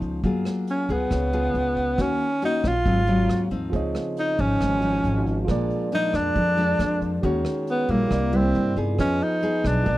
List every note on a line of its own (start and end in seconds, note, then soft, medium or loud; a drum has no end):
0.00 0.21 C#2 medium
0.00 0.22 C#3 soft
0.00 0.20 F3 medium
0.00 0.21 B3 medium
0.00 0.21 D#4 medium
0.00 kick soft
0.00 closed hi-hat soft
0.24 0.44 F#2 medium
0.24 1.09 F#3 soft
0.24 0.86 A#3 soft
0.24 0.86 F4 soft
0.24 0.87 G#4 soft
0.24 kick soft
0.24 closed hi-hat soft
0.45 cross-stick medium
0.45 closed hi-hat soft
0.67 0.94 C#4 medium
0.67 closed hi-hat soft
0.89 1.09 C#2 medium
0.89 2.03 B3 medium
0.89 1.30 F4 soft
0.89 1.30 G#4 medium
0.89 kick soft
0.89 closed hi-hat soft
1.10 1.52 C#2 medium
1.10 1.96 C#3 soft
1.10 kick soft
1.10 cross-stick soft
1.10 closed hi-hat soft
1.33 1.95 F4 medium
1.33 1.95 G#4 medium
1.33 closed hi-hat soft
1.54 1.95 C#2 medium
1.54 closed hi-hat soft
1.76 kick soft
1.76 closed hi-hat soft
1.98 2.18 D#2 medium
1.98 2.84 D#3 soft
1.98 2.26 A#3 soft
1.98 2.27 C#4 soft
1.98 2.44 C#4 medium
1.98 2.27 F#4 soft
1.98 kick soft
1.98 cross-stick soft
1.98 closed hi-hat soft
2.20 closed hi-hat soft
2.42 2.71 A#3 medium
2.42 2.72 C#4 soft
2.42 2.69 D#4 medium
2.42 2.72 F#4 medium
2.42 closed hi-hat soft
2.64 2.84 A#1 medium
2.64 3.53 F4 medium
2.64 kick soft
2.64 cross-stick soft
2.64 closed hi-hat soft
2.86 3.26 G#1 medium
2.86 3.71 G#2 soft
2.86 2.99 F#3 soft
2.86 2.99 C4 soft
2.86 2.99 F4 medium
2.86 kick soft
2.86 closed hi-hat soft
3.07 3.48 F#3 medium
3.07 3.48 C4 soft
3.07 3.48 F4 medium
3.07 closed hi-hat soft
3.29 3.70 D#2 medium
3.29 cross-stick medium
3.29 closed hi-hat soft
3.51 4.35 F3 soft
3.51 4.35 C4 soft
3.51 4.35 D#4 medium
3.51 kick soft
3.51 closed hi-hat soft
3.70 3.93 C#2 medium
3.70 4.58 C#3 soft
3.70 5.43 F4 medium
3.70 5.44 G#4 soft
3.70 kick soft
3.70 closed hi-hat soft
3.74 5.45 C5 soft
3.74 5.46 D#5 medium
3.95 cross-stick medium
3.95 closed hi-hat soft
4.17 4.42 D#4 medium
4.17 closed hi-hat soft
4.38 4.59 G#1 medium
4.38 4.79 F3 soft
4.38 5.49 C#4 medium
4.38 4.79 D#4 soft
4.38 kick soft
4.38 closed hi-hat soft
4.60 5.01 G#1 medium
4.60 5.46 G#2 soft
4.60 kick soft
4.60 cross-stick soft
4.60 closed hi-hat soft
4.82 5.44 F3 medium
4.82 5.45 D#4 medium
4.82 closed hi-hat soft
5.04 5.45 G#1 medium
5.04 closed hi-hat soft
5.26 kick soft
5.26 closed hi-hat soft
5.45 5.69 A#1 medium
5.45 6.33 A#2 soft
5.45 5.89 F3 soft
5.45 5.89 G#3 soft
5.45 7.18 F4 medium
5.45 7.19 G#4 soft
5.45 kick soft
5.45 cross-stick soft
5.45 closed hi-hat soft
5.49 5.89 D4 soft
5.49 7.20 A#4 medium
5.49 7.21 D5 medium
5.70 closed hi-hat soft
5.92 6.54 F3 soft
5.92 6.54 G#3 soft
5.92 6.54 D4 medium
5.92 6.18 D#4 medium
5.92 closed hi-hat soft
6.13 6.34 F2 medium
6.13 7.25 D4 medium
6.13 kick soft
6.13 cross-stick soft
6.13 closed hi-hat soft
6.35 7.21 F2 soft
6.35 6.76 F2 medium
6.35 kick soft
6.35 closed hi-hat soft
6.57 7.20 F3 soft
6.57 7.20 G#3 medium
6.57 7.20 D4 medium
6.57 closed hi-hat soft
6.79 7.20 F2 medium
6.79 cross-stick soft
6.79 closed hi-hat soft
7.01 kick soft
7.01 closed hi-hat soft
7.22 7.44 D#2 medium
7.22 7.88 D#3 soft
7.22 7.86 G#3 soft
7.22 7.86 C#4 soft
7.22 8.09 F#4 soft
7.22 7.86 F#4 soft
7.22 8.10 G#4 soft
7.22 8.11 C#5 medium
7.22 kick soft
7.22 closed hi-hat soft
7.45 cross-stick medium
7.45 closed hi-hat soft
7.67 7.92 B3 medium
7.67 closed hi-hat soft
7.89 8.09 A#1 medium
7.89 8.29 G3 medium
7.89 8.29 A#3 medium
7.89 8.37 A#3 medium
7.89 8.30 E4 medium
7.89 kick soft
7.89 closed hi-hat soft
8.07 8.51 C2 medium
8.07 8.95 E4 soft
8.07 8.96 G4 soft
8.07 kick soft
8.07 cross-stick medium
8.07 closed hi-hat soft
8.11 8.97 C3 soft
8.11 8.97 A#4 soft
8.11 8.98 D5 soft
8.33 8.73 G3 medium
8.33 8.73 A#3 medium
8.33 8.78 C4 medium
8.33 8.73 E4 medium
8.33 closed hi-hat soft
8.55 8.96 G2 medium
8.55 closed hi-hat soft
8.76 9.39 B3 medium
8.76 9.39 D#4 soft
8.76 9.39 G#4 medium
8.76 kick soft
8.76 closed hi-hat soft
8.95 9.19 F2 medium
8.95 9.84 F3 soft
8.95 9.82 F4 soft
8.95 9.84 G#4 soft
8.95 9.85 B4 soft
8.95 kick soft
8.95 cross-stick soft
8.95 closed hi-hat soft
9.00 9.25 C#4 medium
9.00 9.86 D#5 medium
9.21 9.69 D#4 medium
9.21 closed hi-hat soft
9.42 9.84 B3 soft
9.42 9.85 D#4 soft
9.42 9.85 G#4 medium
9.42 closed hi-hat soft
9.64 9.85 B1 medium
9.64 9.98 D4 medium
9.64 kick soft
9.64 cross-stick medium
9.64 closed hi-hat soft
9.83 9.98 A#1 medium
9.83 9.98 A#2 soft
9.83 9.98 F3 soft
9.83 9.98 G#3 soft
9.83 9.98 D4 soft
9.83 9.98 F4 soft
9.83 9.98 G#4 soft
9.83 kick soft
9.83 closed hi-hat soft
9.87 9.98 A#4 soft
9.87 9.98 D5 soft